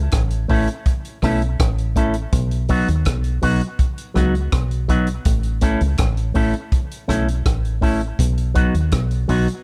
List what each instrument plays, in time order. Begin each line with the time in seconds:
Already playing: fingered electric bass C#2
0.11 fingered electric bass A1, kick, cross-stick, closed hi-hat
0.30 closed hi-hat
0.48 fingered electric bass A1, clean electric guitar A3 C#4 E4 A4, kick, open hi-hat
0.67 closed hi-hat
0.85 kick, closed hi-hat
1.05 closed hi-hat
1.22 fingered electric bass B1, clean electric guitar A3 C#4 E4 A4, kick, cross-stick, open hi-hat
1.42 closed hi-hat
1.60 fingered electric bass A1, kick, cross-stick, closed hi-hat
1.78 closed hi-hat
1.96 clean electric guitar A3 C#4 E4 A4, kick, closed hi-hat
2.14 closed hi-hat
2.32 fingered electric bass B1, kick, closed hi-hat
2.51 closed hi-hat
2.68 clean electric guitar F#3 B3 D#4 F#4, kick, open hi-hat
2.88 fingered electric bass D#2, closed hi-hat
3.05 fingered electric bass B1, kick, cross-stick, closed hi-hat
3.24 closed hi-hat
3.42 fingered electric bass B1, clean electric guitar F#3 B3 D#4 F#4, kick, open hi-hat
3.61 closed hi-hat
3.79 kick, closed hi-hat
3.98 closed hi-hat
4.14 fingered electric bass C#2, clean electric guitar F#3 B3 D#4 F#4, kick, cross-stick, closed hi-hat
4.35 closed hi-hat
4.52 fingered electric bass B1, kick, cross-stick, closed hi-hat
4.71 closed hi-hat
4.88 clean electric guitar F#3 B3 D#4 F#4, kick, closed hi-hat
5.07 closed hi-hat
5.25 fingered electric bass A1, kick, closed hi-hat
5.43 closed hi-hat
5.61 clean electric guitar A3 C#4 E4 A4, kick, closed hi-hat
5.81 fingered electric bass C#2, closed hi-hat
5.97 fingered electric bass A1, kick, cross-stick, closed hi-hat
6.17 closed hi-hat
6.34 fingered electric bass A1, clean electric guitar A3 C#4 E4 A4, kick, open hi-hat
6.53 closed hi-hat
6.72 kick, closed hi-hat
6.91 closed hi-hat
7.08 fingered electric bass B1, clean electric guitar A3 C#4 E4 A4, kick, cross-stick, closed hi-hat
7.28 closed hi-hat
7.46 fingered electric bass A1, kick, cross-stick, closed hi-hat
7.65 closed hi-hat
7.81 clean electric guitar A3 C#4 E4 A4, kick, open hi-hat
8.01 closed hi-hat
8.19 fingered electric bass B1, kick, closed hi-hat
8.37 closed hi-hat
8.54 clean electric guitar F#3 B3 D#4 F#4, kick, closed hi-hat
8.74 fingered electric bass D#2, closed hi-hat
8.91 fingered electric bass B1, kick, cross-stick, closed hi-hat
9.11 closed hi-hat
9.28 fingered electric bass B1, clean electric guitar F#3 B3 D#4 F#4, kick, open hi-hat
9.48 closed hi-hat